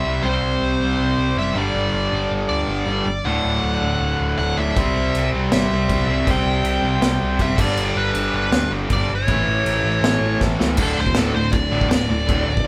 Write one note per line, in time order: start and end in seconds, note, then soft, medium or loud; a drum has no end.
0.00 0.21 C3 medium
0.00 0.22 C3 medium
0.00 0.23 G3 medium
0.00 0.24 G3 medium
0.00 0.23 C4 medium
0.00 0.26 E5 medium
0.05 0.17 C2 medium
0.05 0.21 C3 medium
0.05 0.23 G3 medium
0.05 0.22 C4 medium
0.22 0.36 C2 medium
0.22 0.78 C3 medium
0.22 1.53 C3 loud
0.22 1.54 G3 medium
0.22 0.81 G3 medium
0.22 1.55 C4 loud
0.22 0.79 C4 medium
0.22 1.38 C5 medium
0.43 0.55 C2 medium
0.62 0.74 C2 medium
0.80 0.92 C2 medium
0.80 1.35 C3 medium
0.80 1.36 G3 medium
0.80 1.36 C4 medium
0.99 1.11 C2 medium
1.18 1.30 C2 medium
1.36 1.49 F#1 medium
1.36 1.54 C3 medium
1.36 1.55 G3 medium
1.36 1.56 C4 medium
1.36 1.58 E5 loud
1.54 1.68 G1 medium
1.54 2.85 G2 medium
1.54 2.10 G2 loud
1.54 2.87 D3 medium
1.54 2.12 D3 loud
1.54 2.87 G3 loud
1.58 2.13 G3 loud
1.58 2.32 D5 medium
1.74 1.87 G1 medium
1.93 2.06 G1 medium
2.11 2.25 G1 medium
2.11 2.67 G2 medium
2.11 2.68 D3 medium
2.11 2.66 G3 medium
2.31 2.43 G1 medium
2.49 2.62 D2 medium
2.49 3.27 D5 loud
2.67 2.80 G1 medium
2.67 3.06 G2 medium
2.67 3.06 D3 medium
2.67 3.05 G3 medium
2.86 2.99 G1 medium
2.86 3.05 G2 medium
2.86 3.06 D3 medium
2.86 3.06 G3 medium
3.06 3.19 G1 medium
3.24 3.37 D1 medium
3.24 3.80 D2 medium
3.24 4.56 D2 medium
3.24 3.81 A2 medium
3.24 4.57 A2 loud
3.24 4.56 D3 loud
3.24 3.80 D3 medium
3.24 4.37 F#5 loud
3.45 3.57 D1 medium
3.63 3.76 D1 loud
3.81 3.94 D1 medium
3.81 4.38 D2 medium
3.81 4.38 A2 medium
3.81 4.37 D3 medium
4.00 4.13 D1 medium
4.20 4.32 D1 medium
4.39 4.51 D1 medium
4.39 4.75 D2 medium
4.39 4.76 A2 medium
4.39 4.77 D3 medium
4.39 4.58 F#5 loud
4.57 4.70 D1 medium
4.57 4.75 D2 medium
4.57 4.75 A2 medium
4.57 4.75 D3 medium
4.57 5.29 E5 loud
4.75 4.89 C2 medium
4.75 6.07 C3 loud
4.75 5.36 C3 medium
4.75 6.08 G3 loud
4.75 5.35 G3 medium
4.75 6.06 C4 loud
4.75 kick loud
4.75 crash medium
4.79 5.33 C4 medium
4.96 5.08 C2 medium
5.15 5.27 C2 loud
5.15 crash medium
5.33 5.45 C2 medium
5.33 5.87 C3 medium
5.33 5.90 G3 medium
5.33 5.89 C4 medium
5.52 5.65 G1 medium
5.52 6.30 E5 medium
5.52 snare loud
5.52 crash medium
5.71 5.83 C2 medium
5.89 6.02 C2 loud
5.89 6.24 C3 medium
5.89 6.27 G3 medium
5.89 6.28 C4 medium
5.89 kick medium
5.89 crash medium
6.07 6.20 C2 medium
6.07 6.23 C3 medium
6.07 6.25 G3 medium
6.07 6.26 C4 medium
6.24 6.40 C2 loud
6.24 7.56 C3 loud
6.24 6.82 C3 medium
6.24 7.57 G3 loud
6.24 6.84 G3 medium
6.24 7.58 C4 loud
6.24 kick loud
6.24 crash medium
6.29 6.81 C4 loud
6.29 7.46 G5 loud
6.45 6.58 C2 medium
6.64 6.76 C2 medium
6.64 crash medium
6.82 6.95 C2 medium
6.82 7.37 C3 medium
6.82 7.38 G3 medium
6.82 7.39 C4 medium
7.02 7.15 C2 medium
7.02 snare loud
7.02 crash medium
7.23 7.35 C2 medium
7.38 7.52 F#1 medium
7.38 7.56 C3 medium
7.38 7.58 G3 medium
7.38 7.59 C4 medium
7.38 7.60 E5 loud
7.38 kick medium
7.38 crash medium
7.56 7.71 G1 medium
7.56 8.88 G2 loud
7.56 8.13 G2 loud
7.56 8.89 D3 medium
7.56 8.14 D3 loud
7.56 8.90 G3 loud
7.56 8.15 G3 loud
7.56 kick loud
7.56 crash loud
7.60 7.98 D5 medium
7.77 7.89 G1 medium
7.77 crash medium
7.96 8.09 G1 medium
7.96 8.35 B4 loud
8.14 8.27 G1 medium
8.14 8.70 G2 medium
8.14 8.71 D3 medium
8.14 8.69 G3 medium
8.14 crash medium
8.34 8.46 G1 loud
8.34 8.71 B4 medium
8.51 8.64 D2 medium
8.51 snare loud
8.51 crash medium
8.71 8.83 G1 medium
8.71 9.10 G2 medium
8.71 9.09 D3 medium
8.71 9.08 G3 medium
8.89 9.03 G1 loud
8.89 9.08 G2 medium
8.89 9.08 D3 medium
8.89 9.09 G3 medium
8.89 9.11 D5 medium
8.89 kick medium
8.89 crash medium
9.09 9.28 G1 medium
9.15 10.40 C#5 medium
9.27 9.40 A1 medium
9.27 10.59 A2 medium
9.27 9.84 A2 medium
9.27 10.59 E3 loud
9.27 9.84 E3 medium
9.27 10.58 A3 loud
9.27 9.84 A3 loud
9.27 kick loud
9.27 crash medium
9.48 9.60 A1 medium
9.66 9.78 A1 loud
9.66 crash medium
9.84 9.96 A1 medium
9.84 10.41 E3 medium
9.84 10.40 A3 medium
9.88 10.40 A2 medium
10.02 10.15 A1 loud
10.02 snare loud
10.02 crash medium
10.21 10.34 A1 medium
10.41 10.54 A1 medium
10.41 10.78 A2 medium
10.41 10.79 E3 medium
10.41 10.80 A3 medium
10.41 kick medium
10.41 snare medium
10.59 10.80 C#2 medium
10.59 10.77 A2 medium
10.59 10.77 E3 medium
10.59 10.77 A3 medium
10.59 snare medium
10.77 10.92 D1 medium
10.77 10.94 D2 loud
10.77 11.38 D2 medium
10.77 10.94 A2 loud
10.77 11.35 A2 medium
10.77 10.97 D3 loud
10.77 kick loud
10.77 crash loud
10.77 crash medium
10.82 11.34 D3 medium
10.82 10.99 A4 medium
10.95 11.14 D2 medium
10.95 11.13 A2 medium
10.99 11.12 D1 medium
10.99 11.18 C5 medium
11.06 kick medium
11.14 11.30 D1 medium
11.14 11.33 D2 medium
11.14 11.33 A2 medium
11.14 11.34 D3 medium
11.14 snare loud
11.14 crash medium
11.18 11.35 A4 medium
11.34 11.48 D1 medium
11.34 11.52 D2 medium
11.34 11.52 A2 medium
11.34 11.92 A2 medium
11.34 11.91 D3 medium
11.34 11.54 C5 medium
11.38 11.89 D2 medium
11.52 11.67 D1 medium
11.52 11.70 D2 medium
11.52 11.70 A2 loud
11.52 11.88 D5 medium
11.52 kick loud
11.52 crash medium
11.71 11.86 A1 medium
11.71 11.90 D2 medium
11.71 11.90 A2 medium
11.71 11.90 D3 loud
11.81 kick medium
11.90 12.04 D1 medium
11.90 12.27 D2 medium
11.90 12.08 D2 medium
11.90 12.08 A2 medium
11.90 12.28 A2 medium
11.90 12.67 D5 loud
11.90 snare loud
11.90 crash medium
11.94 12.30 D3 medium
12.09 12.24 D1 medium
12.09 12.25 D2 medium
12.09 12.26 A2 medium
12.27 12.43 D1 loud
12.27 12.45 D2 loud
12.27 12.67 D2 loud
12.27 12.46 A2 medium
12.27 12.67 A2 medium
12.27 12.46 D3 loud
12.27 kick loud
12.27 crash medium
12.31 12.67 D3 loud
12.47 12.61 D1 medium
12.47 12.63 D2 medium
12.47 12.63 A2 medium
12.57 kick medium